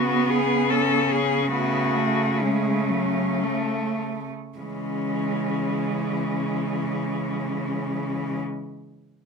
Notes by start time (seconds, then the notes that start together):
Already playing: C#3 B3 F#4
0.30 G#4
0.70 C#4 A4
1.11 G#4
1.52 A3 B3 F#4
1.96 A3
2.40 G#3 A3 C#4
2.90 F#3
3.44 A3
4.58 C#3 E3 G#3 C#4